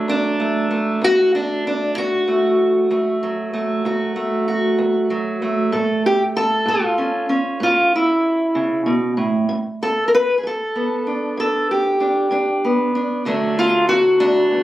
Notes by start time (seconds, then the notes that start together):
Already playing: F#3 A3
0.08 D2 D4
0.40 A3
0.71 A3
1.02 D2 F#4
1.35 D4
1.67 D4
1.96 D2 F#4
2.28 A3
2.90 D2 A3
3.23 F#3
3.53 A3
3.85 D2 F#4
4.16 A3
4.48 F#4
4.78 D2
5.10 F#3
5.42 A3
5.72 A2 A4
6.06 G4
6.37 A4
6.66 A2 F4
6.98 C#4
7.29 C#4
7.60 A2 F4
7.96 E4
8.55 C#3
8.86 B2
9.17 A2
9.49 G2
9.83 A4
10.08 A#4
10.15 B4
10.38 G#4
10.43 G2 A4
10.76 B3
11.07 D4
11.37 G2 A4
11.71 G4
12.00 D4
12.31 G2 D4
12.64 B3
12.95 D4
13.25 D2 D3 F#3 A3 D4
13.59 F4
13.89 F#4
14.20 D2 D4
14.51 E2